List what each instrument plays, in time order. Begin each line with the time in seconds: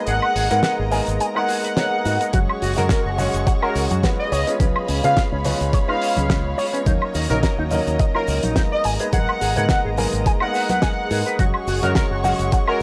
Already playing: string section G#4 D#5 A#5
0.06 fingered electric bass G#1, grand piano G#3 A#3 B3 D#4 A#4, clean electric guitar G#4, analog synth lead F#5, closed hi-hat, shaker
0.22 high woodblock
0.36 fingered electric bass G#1, clean electric guitar G#4, open hi-hat, shaker
0.50 fingered electric bass G#2, grand piano G#3 A#3 B3 D#4 A#4, clean electric guitar G#4, analog synth lead F#5, closed hi-hat, shaker
0.63 analog synth lead F#5, snare, closed hi-hat, shaker
0.79 fingered electric bass G#1, clean electric guitar G#4
0.91 grand piano G#3 A#3 B3 D#4 A#4, clean electric guitar G#5, open hi-hat, shaker
1.07 fingered electric bass G#1, closed hi-hat, shaker
1.20 clean electric guitar G#5, closed hi-hat, shaker
1.35 grand piano G#3 A#3 B3 D#4 A#4, clean electric guitar A#4, analog synth lead F#5, high woodblock
1.49 clean electric guitar G#4, open hi-hat, shaker
1.64 clean electric guitar B4, analog synth lead F#5, closed hi-hat, shaker
1.76 grand piano G#3 A#3 B3 D#4 A#4, clean electric guitar C#5, snare, closed hi-hat, shaker
2.05 fingered electric bass G#2, grand piano G#3 A#3 B3 D#4 A#4, clean electric guitar F#4, open hi-hat, shaker
2.21 clean electric guitar A#4, closed hi-hat, shaker
2.33 fingered electric bass F#1, grand piano G#3 C#4 F#4, clean electric guitar F#4, string section C#5 F#5 C#6, kick, closed hi-hat, high conga, shaker
2.49 high woodblock
2.62 fingered electric bass F#1, clean electric guitar F#4, open hi-hat, shaker
2.76 fingered electric bass F#2, grand piano G#3 C#4 F#4, clean electric guitar F#4, analog synth lead A#4, closed hi-hat, low conga, shaker
2.89 analog synth lead A#4, kick, snare, closed hi-hat, shaker
3.06 fingered electric bass F#1, clean electric guitar F#4
3.18 grand piano G#3 C#4 F#4, clean electric guitar F#5, open hi-hat, high conga, low conga, shaker
3.34 fingered electric bass F#1, closed hi-hat, shaker
3.47 clean electric guitar F#5, kick, closed hi-hat, shaker
3.62 grand piano G#3 C#4 F#4, clean electric guitar G#4, analog synth lead A#4, high woodblock
3.75 fingered electric bass C#2, open hi-hat, shaker
3.91 fingered electric bass F#2, clean electric guitar F#4, closed hi-hat, high conga, shaker
4.03 grand piano G#3 B3 C#4 F4 B4, clean electric guitar F#4, kick, snare, closed hi-hat, shaker
4.19 analog synth lead D#5
4.32 fingered electric bass C#2, clean electric guitar C#5, string section C#5 F5 B5, analog synth lead D#5, open hi-hat, shaker
4.47 grand piano G#3 B3 C#4 F4 C#5, clean electric guitar C#4, closed hi-hat, shaker
4.60 fingered electric bass C#2, grand piano G#3 B3 C#4 F4 B4, clean electric guitar C#4, kick, closed hi-hat, high conga, shaker
4.76 high woodblock
4.88 fingered electric bass C#2, clean electric guitar C#4, open hi-hat, shaker
5.03 fingered electric bass C#3, grand piano G#3 B3 C#4 F4 B4, clean electric guitar C#4, analog synth lead F5, closed hi-hat, low conga, shaker
5.17 kick, snare, closed hi-hat, shaker
5.32 fingered electric bass C#2, clean electric guitar C#4
5.45 grand piano G#3 B3 C#4 F4 B4, clean electric guitar C#5, open hi-hat, high conga, low conga, shaker
5.61 fingered electric bass C#2, closed hi-hat, shaker
5.73 clean electric guitar C#5, kick, closed hi-hat, shaker
5.88 grand piano G#3 B3 C#4 F4 B4, clean electric guitar D#4, analog synth lead F5, high woodblock
6.02 open hi-hat, shaker
6.17 fingered electric bass C#2, clean electric guitar C#4, closed hi-hat, high conga, shaker
6.29 grand piano G#3 B3 C#4 F4 B4, clean electric guitar C#4, kick, snare, closed hi-hat, shaker
6.58 clean electric guitar C#5, open hi-hat, shaker
6.73 grand piano G#3 B3 C#4 F4 C#5, clean electric guitar C#4, closed hi-hat, shaker
6.86 fingered electric bass D#2, grand piano F#3 A#3 C#4 D#4, string section F#3 D#5 A#5, clean electric guitar D#4, kick, closed hi-hat, high conga, shaker
7.02 high woodblock
7.15 fingered electric bass D#2, clean electric guitar D#4, open hi-hat, shaker
7.29 fingered electric bass A#1, grand piano F#3 A#3 C#4 D#4 A#4, clean electric guitar D#4, analog synth lead A#4, closed hi-hat, low conga, shaker
7.43 analog synth lead A#4, kick, snare, closed hi-hat, shaker
7.58 fingered electric bass D#2, clean electric guitar D#4
7.71 grand piano F#3 A#3 C#4 D#4 A#4, clean electric guitar D#5, open hi-hat, high conga, low conga, shaker
7.87 fingered electric bass D#2, closed hi-hat, shaker
7.99 clean electric guitar D#5, kick, closed hi-hat, shaker
8.15 grand piano F#3 A#3 C#4 D#4 A#4, clean electric guitar F4, analog synth lead A#4, high woodblock
8.28 fingered electric bass C#2, open hi-hat, shaker
8.43 fingered electric bass A#1, clean electric guitar D#4, closed hi-hat, high conga, shaker
8.56 grand piano G#3 A#3 B3 D#4 A#4, clean electric guitar D#4, kick, snare, closed hi-hat, shaker
8.72 analog synth lead D#5
8.84 fingered electric bass G#1, string section G#4 D#5, clean electric guitar G#5, open hi-hat, shaker
8.99 grand piano G#3 A#3 B3 D#4 B4, clean electric guitar G#4, closed hi-hat, shaker
9.12 fingered electric bass G#1, grand piano G#3 A#3 B3 D#4 A#4, clean electric guitar G#4, analog synth lead F#5, kick, closed hi-hat, high conga, shaker
9.29 high woodblock
9.41 fingered electric bass G#1, clean electric guitar G#4, open hi-hat, shaker
9.56 fingered electric bass G#2, grand piano G#3 A#3 B3 D#4 A#4, clean electric guitar G#4, analog synth lead F#5, closed hi-hat, low conga, shaker
9.69 analog synth lead F#5, kick, snare, closed hi-hat, shaker
9.85 fingered electric bass G#1, clean electric guitar G#4
9.97 grand piano G#3 A#3 B3 D#4 A#4, clean electric guitar G#5, open hi-hat, high conga, low conga, shaker
10.13 fingered electric bass G#1, closed hi-hat, shaker
10.26 clean electric guitar G#5, kick, closed hi-hat, shaker
10.40 grand piano G#3 A#3 B3 D#4 A#4, clean electric guitar A#4, analog synth lead F#5, high woodblock
10.54 clean electric guitar B4, open hi-hat, shaker
10.69 clean electric guitar B4, analog synth lead F#5, closed hi-hat, high conga, shaker
10.82 grand piano G#3 A#3 B3 D#4 A#4, clean electric guitar G#5, kick, snare, closed hi-hat, shaker
11.11 fingered electric bass G#2, grand piano G#3 A#3 B3 D#4 A#4, clean electric guitar G#4, open hi-hat, shaker
11.26 clean electric guitar B4, closed hi-hat, shaker
11.39 fingered electric bass F#1, grand piano G#3 C#4 F#4, clean electric guitar F#4, string section C#5 F#5 C#6, kick, closed hi-hat, high conga, shaker
11.54 high woodblock
11.67 fingered electric bass F#1, clean electric guitar F#4, open hi-hat, shaker
11.82 fingered electric bass F#2, grand piano G#3 C#4 F#4, clean electric guitar F#4, analog synth lead A#4, closed hi-hat, low conga, shaker
11.95 analog synth lead A#4, kick, snare, closed hi-hat, shaker
12.11 fingered electric bass F#1, clean electric guitar F#4
12.24 grand piano G#3 C#4 F#4, clean electric guitar F#5, open hi-hat, high conga, low conga, shaker
12.39 fingered electric bass F#1, closed hi-hat, shaker
12.52 clean electric guitar F#5, kick, closed hi-hat, shaker
12.68 grand piano G#3 C#4 F#4, clean electric guitar G#4, analog synth lead A#4, high woodblock